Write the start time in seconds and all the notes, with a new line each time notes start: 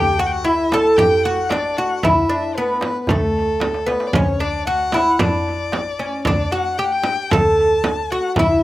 Already playing: D2 G4 G5
0.19 F#4 F#5
0.26 G5
0.32 F#5
0.45 E4 E5, darbuka ka
0.72 A4 A5, darbuka tek, frame drum
0.96 A1 G4 G5, frame drum, darbuka dum
1.11 darbuka ka
1.23 F#4 F#5, darbuka ka
1.50 D4 D5, darbuka tek, frame drum
1.77 F#4 F#5, darbuka ka
1.90 darbuka ka
2.03 D2 E4 E5, frame drum, darbuka dum
2.29 D4, darbuka ka
2.56 B3 B4, darbuka ka
2.68 darbuka ka
2.81 B4, darbuka tek, frame drum
3.02 B4
3.07 D2 A3 A4, darbuka dum, frame drum
3.21 darbuka ka
3.48 darbuka ka
3.60 darbuka tek, frame drum
3.74 darbuka ka
3.86 B3 B4, darbuka tek
4.00 darbuka ka
4.07 D5
4.13 D2 C#4 C#5, frame drum, darbuka dum
4.40 D4 D5
4.67 F#4 F#5, darbuka ka
4.92 E4, darbuka tek, frame drum
5.19 A1 D4 D5, frame drum, darbuka dum
5.33 darbuka ka
5.47 darbuka ka
5.72 darbuka tek, frame drum
5.99 C#4, darbuka ka
6.13 darbuka ka
6.25 D2 D4 D5, frame drum, darbuka dum
6.51 F#4 F#5
6.78 G4 G5, darbuka ka
6.84 F#5
6.92 G5
7.04 frame drum
7.30 D2 A4 A5, frame drum, darbuka dum
7.44 darbuka ka
7.58 darbuka ka
7.84 darbuka tek, frame drum
8.11 F#4 F#5, darbuka ka
8.23 darbuka ka
8.36 D2 E4 E5, darbuka dum, frame drum